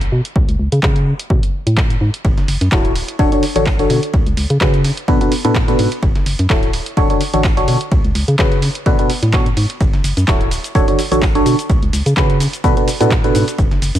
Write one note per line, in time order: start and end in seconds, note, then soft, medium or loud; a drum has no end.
0.01 closed hi-hat medium
0.12 0.21 B2 medium
0.25 closed hi-hat medium
0.36 0.45 C#2 loud
0.36 kick loud
0.49 0.56 C#2 medium
0.49 closed hi-hat soft
0.59 0.69 C#2 medium
0.72 0.80 C#3 loud
0.72 closed hi-hat medium
0.83 1.14 C#3 loud
0.83 kick loud
0.83 clap loud
0.96 closed hi-hat soft
1.19 closed hi-hat medium
1.30 1.39 B2 medium
1.30 kick loud
1.43 closed hi-hat medium
1.67 1.96 A2 medium
1.67 closed hi-hat medium
1.77 kick loud
1.77 clap loud
1.90 closed hi-hat medium
2.01 2.10 G#2 medium
2.14 closed hi-hat medium
2.25 2.34 F#1 loud
2.25 kick loud
2.25 ride medium
2.38 2.45 F#1 loud
2.38 snare medium
2.38 closed hi-hat soft
2.48 2.57 F#1 medium
2.48 open hi-hat loud
2.48 ride medium
2.61 2.69 F#2 loud
2.61 closed hi-hat medium
2.61 ride soft
2.72 3.03 D1 loud
2.72 2.93 E4 medium
2.72 2.93 F#4 medium
2.72 2.93 A4 medium
2.72 2.93 C#5 medium
2.72 kick loud
2.72 snare loud
2.72 clap loud
2.72 ride medium
2.85 closed hi-hat soft
2.96 open hi-hat loud
2.96 ride medium
3.08 closed hi-hat medium
3.19 3.28 D1 medium
3.19 3.30 D3 loud
3.19 3.30 D4 medium
3.19 3.30 F#4 medium
3.19 3.30 A4 medium
3.19 3.30 C#5 loud
3.19 kick loud
3.19 ride medium
3.32 3.44 D3 medium
3.32 3.44 D4 medium
3.32 3.44 F#4 medium
3.32 3.44 A4 medium
3.32 3.44 C#5 medium
3.32 closed hi-hat medium
3.43 open hi-hat loud
3.43 ride medium
3.56 3.85 A1 medium
3.56 3.68 D3 medium
3.56 3.68 D4 medium
3.56 3.68 F#4 medium
3.56 3.68 A4 medium
3.56 3.68 C#5 medium
3.56 closed hi-hat medium
3.66 kick loud
3.66 snare loud
3.66 clap loud
3.66 open hi-hat medium
3.79 4.00 D3 medium
3.79 4.00 D4 medium
3.79 4.00 F#4 medium
3.79 4.00 A4 medium
3.79 4.00 C#5 medium
3.79 closed hi-hat medium
3.79 ride soft
3.90 3.99 B2 medium
3.90 open hi-hat loud
3.90 ride medium
4.03 closed hi-hat medium
4.14 4.23 C#2 loud
4.14 kick loud
4.14 ride medium
4.26 4.34 C#2 loud
4.26 closed hi-hat soft
4.37 4.46 C#2 medium
4.37 open hi-hat loud
4.37 ride medium
4.50 4.58 C#3 loud
4.50 closed hi-hat medium
4.61 4.91 C#3 loud
4.61 4.82 C#3 medium
4.61 4.82 C#4 medium
4.61 4.82 F#4 medium
4.61 4.82 G#4 medium
4.61 4.82 B4 medium
4.61 kick loud
4.61 snare loud
4.61 clap loud
4.61 ride medium
4.74 closed hi-hat soft
4.84 snare soft
4.84 open hi-hat loud
4.84 ride medium
4.97 closed hi-hat medium
5.08 5.19 B2 loud
5.08 5.17 B2 medium
5.08 5.19 D4 medium
5.08 5.19 F#4 medium
5.08 5.19 A4 medium
5.08 5.19 B4 loud
5.08 kick loud
5.08 ride medium
5.21 5.33 B2 medium
5.21 5.33 D4 medium
5.21 5.33 F#4 medium
5.21 5.33 A4 medium
5.21 5.33 B4 medium
5.21 closed hi-hat medium
5.32 open hi-hat loud
5.32 ride medium
5.45 5.74 A2 medium
5.45 5.57 B2 medium
5.45 5.57 D4 medium
5.45 5.57 F#4 medium
5.45 5.57 A4 medium
5.45 5.57 B4 medium
5.45 closed hi-hat medium
5.45 ride soft
5.55 kick loud
5.55 snare loud
5.55 clap loud
5.55 ride medium
5.68 5.89 B2 medium
5.68 5.89 D4 medium
5.68 5.89 F#4 medium
5.68 5.89 A4 medium
5.68 5.89 B4 medium
5.68 closed hi-hat medium
5.79 5.88 G#2 medium
5.79 open hi-hat loud
5.79 ride medium
5.92 closed hi-hat medium
5.92 ride soft
6.03 6.12 F#1 medium
6.03 kick loud
6.03 ride medium
6.15 6.23 F#1 loud
6.15 snare medium
6.15 closed hi-hat soft
6.26 6.35 F#1 medium
6.26 open hi-hat loud
6.26 ride medium
6.39 6.47 F#2 loud
6.39 closed hi-hat medium
6.39 ride soft
6.50 6.80 D1 loud
6.50 6.71 E4 medium
6.50 6.71 F#4 medium
6.50 6.71 A4 medium
6.50 6.71 C#5 medium
6.50 kick loud
6.50 snare loud
6.50 clap loud
6.50 ride medium
6.63 closed hi-hat soft
6.73 open hi-hat loud
6.73 ride medium
6.86 closed hi-hat medium
6.97 7.06 D1 medium
6.97 7.08 D3 medium
6.97 7.08 D4 medium
6.97 7.08 F#4 medium
6.97 7.08 A4 medium
6.97 7.08 C#5 loud
6.97 kick loud
6.97 ride medium
7.10 7.22 D3 medium
7.10 7.22 D4 medium
7.10 7.22 F#4 medium
7.10 7.22 A4 medium
7.10 7.22 C#5 medium
7.10 closed hi-hat medium
7.21 open hi-hat loud
7.21 ride medium
7.34 7.63 A1 medium
7.34 7.46 D3 medium
7.34 7.46 D4 medium
7.34 7.46 F#4 medium
7.34 7.46 A4 medium
7.34 7.46 C#5 medium
7.34 closed hi-hat medium
7.44 kick loud
7.44 snare loud
7.44 clap loud
7.44 open hi-hat medium
7.57 7.78 D3 medium
7.57 7.78 D4 medium
7.57 7.78 F#4 medium
7.57 7.78 A4 medium
7.57 7.78 C#5 medium
7.57 closed hi-hat medium
7.57 ride soft
7.68 7.77 B2 medium
7.68 open hi-hat loud
7.68 ride medium
7.81 closed hi-hat medium
7.92 8.01 C#2 medium
7.92 kick loud
7.92 ride medium
8.04 8.12 C#2 loud
8.04 closed hi-hat soft
8.15 8.24 C#2 medium
8.15 open hi-hat loud
8.15 ride medium
8.28 8.36 C#3 loud
8.28 closed hi-hat medium
8.39 8.60 C#3 medium
8.39 8.69 C#3 loud
8.39 8.60 C#4 medium
8.39 8.60 F#4 medium
8.39 8.60 G#4 medium
8.39 8.60 B4 medium
8.39 kick loud
8.39 snare loud
8.39 clap loud
8.39 ride medium
8.52 closed hi-hat soft
8.62 snare soft
8.62 open hi-hat loud
8.62 ride medium
8.75 closed hi-hat medium
8.86 8.97 B2 loud
8.86 8.95 B2 medium
8.86 8.97 D4 medium
8.86 8.97 F#4 medium
8.86 8.97 A4 medium
8.86 8.97 B4 loud
8.86 kick loud
8.86 ride medium
8.99 9.11 B2 medium
8.99 9.11 D4 medium
8.99 9.11 F#4 medium
8.99 9.11 A4 medium
8.99 9.11 B4 medium
8.99 closed hi-hat medium
9.10 open hi-hat loud
9.10 ride medium
9.23 9.52 A2 medium
9.23 closed hi-hat medium
9.23 ride soft
9.33 9.47 B2 medium
9.33 9.47 D4 medium
9.33 9.47 F#4 medium
9.33 9.47 A4 medium
9.33 9.47 C#5 medium
9.33 kick loud
9.33 snare loud
9.33 clap loud
9.33 ride medium
9.46 closed hi-hat medium
9.57 9.66 G#2 medium
9.57 open hi-hat loud
9.57 ride medium
9.70 closed hi-hat medium
9.70 ride soft
9.81 9.90 F#1 loud
9.81 kick loud
9.81 ride medium
9.81 cabasa soft
9.93 10.01 F#1 loud
9.93 snare medium
9.93 closed hi-hat soft
10.04 10.13 F#1 medium
10.04 open hi-hat loud
10.04 ride medium
10.04 cabasa medium
10.17 10.25 F#2 loud
10.17 closed hi-hat medium
10.17 ride soft
10.17 cabasa soft
10.28 10.58 D1 loud
10.28 10.49 E4 medium
10.28 10.49 F#4 medium
10.28 10.49 A4 medium
10.28 10.49 C#5 medium
10.28 kick loud
10.28 snare loud
10.28 clap loud
10.28 ride medium
10.28 cabasa soft
10.41 closed hi-hat soft
10.51 open hi-hat loud
10.51 ride medium
10.51 cabasa medium
10.64 closed hi-hat medium
10.64 cabasa soft
10.75 10.84 D1 medium
10.75 10.86 D3 medium
10.75 10.86 D4 medium
10.75 10.86 F#4 medium
10.75 10.86 A4 medium
10.75 10.86 C#5 loud
10.75 kick loud
10.75 ride medium
10.75 cabasa soft
10.88 11.00 D3 medium
10.88 11.00 D4 medium
10.88 11.00 F#4 medium
10.88 11.00 A4 medium
10.88 11.00 C#5 medium
10.88 closed hi-hat soft
10.99 open hi-hat loud
10.99 ride medium
10.99 cabasa medium
11.12 11.41 A1 medium
11.12 11.24 D3 medium
11.12 11.24 D4 medium
11.12 11.24 F#4 medium
11.12 11.24 A4 medium
11.12 11.24 C#5 medium
11.12 closed hi-hat medium
11.12 cabasa soft
11.22 kick loud
11.22 snare loud
11.22 clap loud
11.22 open hi-hat medium
11.22 cabasa soft
11.35 11.56 D3 medium
11.35 11.56 D4 medium
11.35 11.56 F#4 medium
11.35 11.56 A4 medium
11.35 11.56 C#5 medium
11.35 closed hi-hat soft
11.35 ride soft
11.46 11.55 B2 medium
11.46 open hi-hat loud
11.46 ride medium
11.46 cabasa medium
11.59 closed hi-hat medium
11.59 cabasa soft
11.70 11.79 C#2 loud
11.70 kick loud
11.70 ride medium
11.70 cabasa soft
11.83 11.90 C#2 loud
11.83 closed hi-hat soft
11.93 12.02 C#2 medium
11.93 open hi-hat loud
11.93 ride medium
11.93 cabasa medium
12.06 12.14 C#3 loud
12.06 closed hi-hat medium
12.06 cabasa soft
12.17 12.47 C#3 loud
12.17 12.38 C#3 medium
12.17 12.38 C#4 medium
12.17 12.38 F#4 medium
12.17 12.38 G#4 medium
12.17 12.38 B4 medium
12.17 kick loud
12.17 snare loud
12.17 clap loud
12.17 ride medium
12.17 cabasa soft
12.30 closed hi-hat soft
12.40 snare medium
12.40 open hi-hat loud
12.40 ride medium
12.40 cabasa medium
12.53 closed hi-hat medium
12.53 cabasa soft
12.64 12.73 B2 medium
12.64 12.75 B2 loud
12.64 12.75 D4 medium
12.64 12.75 F#4 medium
12.64 12.75 A4 medium
12.64 12.75 B4 loud
12.64 kick loud
12.64 ride medium
12.64 cabasa soft
12.77 12.89 B2 medium
12.77 12.89 D4 medium
12.77 12.89 F#4 medium
12.77 12.89 A4 medium
12.77 12.89 B4 medium
12.77 closed hi-hat medium
12.88 open hi-hat loud
12.88 ride medium
12.88 cabasa medium
13.01 13.30 A2 medium
13.01 13.13 B2 medium
13.01 13.13 D4 medium
13.01 13.13 F#4 medium
13.01 13.13 A4 medium
13.01 13.13 B4 medium
13.01 closed hi-hat medium
13.01 ride soft
13.01 cabasa soft
13.11 kick loud
13.11 snare loud
13.11 clap loud
13.11 ride medium
13.11 cabasa soft
13.24 13.45 B2 medium
13.24 13.45 D4 medium
13.24 13.45 F#4 medium
13.24 13.45 A4 medium
13.24 13.45 B4 medium
13.24 closed hi-hat medium
13.35 13.44 G#2 medium
13.35 open hi-hat loud
13.35 ride medium
13.35 cabasa medium
13.48 closed hi-hat medium
13.48 ride soft
13.48 cabasa soft
13.58 13.68 F#1 medium
13.58 kick loud
13.58 ride medium
13.58 cabasa soft
13.71 13.79 F#1 loud
13.71 snare medium
13.71 closed hi-hat soft
13.82 13.91 F#1 medium
13.82 open hi-hat loud
13.82 ride medium
13.82 cabasa medium
13.95 13.99 F#2 loud
13.95 closed hi-hat medium
13.95 ride soft
13.95 cabasa soft